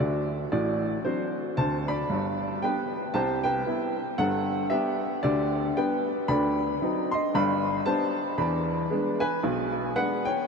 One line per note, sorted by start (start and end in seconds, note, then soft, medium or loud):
0.00 0.42 D2 medium
0.00 0.42 D3 medium
0.00 0.50 F#4 medium
0.00 0.45 D5 medium
0.52 0.95 A1 medium
0.52 0.95 A2 medium
0.52 1.02 F#4 medium
0.52 0.97 D5 medium
1.05 1.35 F#3 soft
1.05 1.34 C4 soft
1.05 1.34 D4 soft
1.05 1.55 F#4 medium
1.05 1.50 C5 medium
1.57 2.00 D2 medium
1.57 2.00 D3 medium
1.57 1.87 C5 medium
1.57 1.84 A5 medium
1.88 2.59 D5 medium
1.88 2.52 B5 medium
2.09 2.54 G1 medium
2.09 2.55 G2 medium
2.62 2.92 G3 soft
2.62 2.92 B3 soft
2.62 2.93 D4 soft
2.62 3.13 B4 medium
2.62 3.07 G5 medium
3.14 3.59 C2 medium
3.14 3.59 C3 medium
3.14 3.44 C5 medium
3.14 3.40 A5 medium
3.44 4.16 B4 medium
3.44 4.08 G5 medium
3.66 3.95 G3 soft
3.66 3.96 B3 soft
3.66 3.96 E4 soft
4.18 4.64 G1 medium
4.18 4.64 G2 medium
4.18 4.69 A4 medium
4.18 4.64 F#5 medium
4.70 5.00 G3 soft
4.70 5.00 B3 medium
4.70 5.01 D4 medium
4.70 5.21 G4 medium
4.70 5.16 E5 medium
5.23 5.69 D2 medium
5.23 5.69 D3 medium
5.23 5.73 G4 medium
5.23 5.68 D5 loud
5.77 6.06 G3 soft
5.77 6.07 B3 soft
5.77 6.06 D4 soft
5.77 6.26 B4 medium
5.77 6.22 G5 medium
6.28 6.74 D2 medium
6.28 6.74 D3 medium
6.28 7.09 D5 medium
6.28 7.00 B5 loud
6.82 7.11 F#3 medium
6.82 7.11 C4 soft
6.82 7.11 D#4 medium
7.11 7.34 D#5 medium
7.11 7.31 C6 medium
7.34 7.79 G1 medium
7.34 7.79 G2 medium
7.34 7.84 D5 medium
7.34 7.80 B5 loud
7.86 8.15 G3 medium
7.86 8.15 B3 soft
7.86 8.16 D4 medium
7.86 8.36 C5 medium
7.86 8.31 A5 medium
8.38 8.83 E2 medium
8.38 8.83 E3 medium
8.38 9.18 D5 medium
8.38 9.09 B5 medium
8.90 9.20 G#3 medium
8.90 9.20 B3 soft
8.90 9.21 D4 soft
9.20 9.71 B4 medium
9.20 9.66 G#5 medium
9.43 9.89 B1 medium
9.43 9.89 B2 medium
9.96 10.25 G#3 medium
9.96 10.25 B3 soft
9.96 10.25 D4 soft
9.96 10.25 B4 medium
9.96 10.22 F#5 medium
10.25 10.47 C#5 medium
10.25 10.47 G5 medium